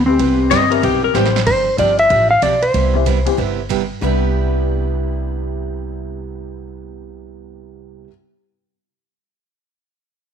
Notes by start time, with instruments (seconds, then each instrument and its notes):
Already playing: upright bass D2
0.06 honky-tonk piano E3 G3 C4 G4 B4, electric slide guitar C4
0.19 upright bass C2, steel-string acoustic guitar C3 G3 B3 E4 G4, kick, ride
0.50 upright bass G1, steel-string acoustic guitar C3 G3 B3 E4 G4, pedal steel guitar D#5, kick, snare, hi-hat pedal, ride
0.70 honky-tonk piano E3 G3 B3 C4 E4, pedal steel guitar A#4, ride
0.82 upright bass B1, steel-string acoustic guitar C3 G3 B3 E4 G4, pedal steel guitar G4, kick, ride
1.04 pedal steel guitar A#4
1.13 upright bass A1, steel-string acoustic guitar C3 G3 B3 E4 G4, honky-tonk piano E3 G3 B3 C4 G4, pedal steel guitar C5, snare, hi-hat pedal
1.26 snare
1.36 snare
1.47 upright bass G1, steel-string acoustic guitar C3 F3 C4 D4 G4, electric slide guitar C5, kick, crash
1.77 upright bass G1, steel-string acoustic guitar C3 F3 C4 D4 G4, honky-tonk piano F3 G3 C4 D4 F4, electric slide guitar D5, kick, hi-hat pedal, ride
1.99 electric slide guitar E5, ride
2.09 upright bass A1, steel-string acoustic guitar C3 F3 C4 D4 G4, kick, ride
2.31 electric slide guitar F5
2.42 upright bass B1, steel-string acoustic guitar C3 F3 C4 D4 G4, electric slide guitar D5, kick, hi-hat pedal, ride
2.63 electric slide guitar C5, ride
2.73 upright bass C2, steel-string acoustic guitar C3 G3 B3 E4 G4, kick, ride
2.94 honky-tonk piano E3 G3 B3 C4 E4
3.06 steel-string acoustic guitar C3 G3 B3 E4 G4, kick, hi-hat pedal, ride
3.26 honky-tonk piano E3 G3 B3 C4 G4, ride
3.37 upright bass G1, steel-string acoustic guitar C3 G3 B3 E4 G4, kick
3.69 steel-string acoustic guitar C3 G3 B3 E4 G4, kick, hi-hat pedal, ride
4.01 upright bass C2, honky-tonk piano C3 G3 B3 D4 E4, steel-string acoustic guitar C3 G3 B3 E4 G4